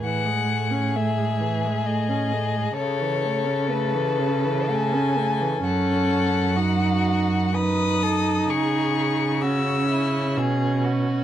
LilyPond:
<<
  \new Staff \with { instrumentName = "Violin" } { \time 3/4 \key a \lydian \tempo 4 = 65 fis''4 e''4 dis''4 | cis''4 b'4 gis''4 | fis''2 dis'''4 | cis'''4 e'''4 r4 | }
  \new Staff \with { instrumentName = "Violin" } { \time 3/4 \key a \lydian gis'2. | a'2. | a'4 fis'4 b'8 a'8 | gis'4 fis'8 e'8 gis'8 fis'8 | }
  \new Staff \with { instrumentName = "Viola" } { \time 3/4 \key a \lydian e16 gis16 a16 cis'16 a16 gis16 e16 gis16 a16 cis'16 a16 gis16 | cis16 e16 a16 cis'16 a16 e16 cis16 e16 a16 cis'16 a16 e16 | cis'4 dis'4 dis'4~ | dis'4 cis'2 | }
  \new Staff \with { instrumentName = "Cello" } { \clef bass \time 3/4 \key a \lydian a,2. | cis2. | fis,2. | cis2 b,4 | }
>>